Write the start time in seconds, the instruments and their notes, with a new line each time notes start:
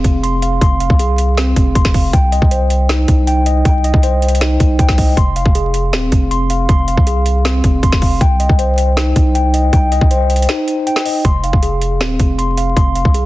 Already playing: tine electric piano C4 G#4 F5 C6
0.04 808-style bass F1, kick, closed hi-hat
0.23 tine electric piano C6, closed hi-hat
0.42 tine electric piano F5, closed hi-hat
0.61 808-style bass F1, tine electric piano C6, kick, closed hi-hat
0.80 tine electric piano F5, closed hi-hat
0.90 808-style bass C2, kick
0.99 tine electric piano G#4, closed hi-hat
1.18 closed hi-hat
1.37 tine electric piano C4, snare, closed hi-hat
1.56 808-style bass F1, kick, closed hi-hat
1.75 808-style bass F1, tine electric piano C6, kick, closed hi-hat
1.85 kick, snare
1.94 tine electric piano F5, kick, open hi-hat
2.13 808-style bass C2, tine electric piano G5, kick, closed hi-hat
2.32 tine electric piano D#5, closed hi-hat
2.42 808-style bass C2, kick
2.51 tine electric piano C5, closed hi-hat
2.70 closed hi-hat
2.89 tine electric piano D#4, snare, closed hi-hat
3.08 808-style bass C2, kick, closed hi-hat
3.27 tine electric piano G5, closed hi-hat
3.46 tine electric piano D#5, closed hi-hat
3.65 808-style bass C2, tine electric piano G5, kick, closed hi-hat
3.84 tine electric piano D#5, closed hi-hat
3.94 808-style bass C2, kick
4.03 tine electric piano C5, closed hi-hat
4.22 closed hi-hat
4.28 closed hi-hat
4.35 closed hi-hat
4.41 tine electric piano D#4, snare, closed hi-hat
4.60 808-style bass C2, kick, closed hi-hat
4.79 808-style bass C2, tine electric piano G5, kick, closed hi-hat
4.89 kick, snare
4.98 tine electric piano D#5, kick, open hi-hat
5.17 808-style bass F1, tine electric piano C6, kick, closed hi-hat
5.36 tine electric piano F5, closed hi-hat
5.46 808-style bass F1, kick
5.55 tine electric piano G#4, closed hi-hat
5.74 closed hi-hat
5.93 808-style bass D#1, tine electric piano C4, snare, closed hi-hat
6.12 808-style bass F1, kick, closed hi-hat
6.31 tine electric piano C6, closed hi-hat
6.50 tine electric piano F5, closed hi-hat
6.69 808-style bass F1, tine electric piano C6, kick, closed hi-hat
6.88 tine electric piano F5, closed hi-hat
6.97 808-style bass C2, kick
7.07 tine electric piano G#4, closed hi-hat
7.26 closed hi-hat
7.45 tine electric piano C4, snare, closed hi-hat
7.64 808-style bass F1, kick, closed hi-hat
7.83 808-style bass F1, tine electric piano C6, kick, closed hi-hat
7.92 kick, snare
8.02 tine electric piano F5, kick, open hi-hat
8.21 808-style bass C2, tine electric piano G5, kick, closed hi-hat
8.40 tine electric piano D#5, closed hi-hat
8.49 808-style bass C2, kick
8.59 tine electric piano C5, closed hi-hat
8.78 closed hi-hat
8.97 tine electric piano D#4, snare, closed hi-hat
9.16 808-style bass C2, kick, closed hi-hat
9.35 tine electric piano G5, closed hi-hat
9.54 tine electric piano D#5, closed hi-hat
9.73 808-style bass C2, tine electric piano G5, kick, closed hi-hat
9.92 tine electric piano D#5, closed hi-hat
10.01 808-style bass C2, kick
10.11 tine electric piano C5, closed hi-hat
10.30 closed hi-hat
10.36 closed hi-hat
10.42 closed hi-hat
10.49 tine electric piano D#4, snare, closed hi-hat
10.68 closed hi-hat
10.87 tine electric piano G5, closed hi-hat
10.96 snare
11.06 tine electric piano D#5, open hi-hat
11.25 808-style bass F1, tine electric piano C6, kick, closed hi-hat
11.44 tine electric piano F5, closed hi-hat
11.53 808-style bass F1, kick
11.63 tine electric piano G#4, closed hi-hat
11.81 closed hi-hat
12.01 808-style bass D#1, tine electric piano C4, snare, closed hi-hat
12.20 808-style bass F1, kick, closed hi-hat
12.38 tine electric piano C6, closed hi-hat
12.57 tine electric piano F5, closed hi-hat
12.76 808-style bass F1, tine electric piano C6, kick, closed hi-hat
12.95 tine electric piano F5, closed hi-hat
13.05 808-style bass C2, kick
13.14 tine electric piano G#4, closed hi-hat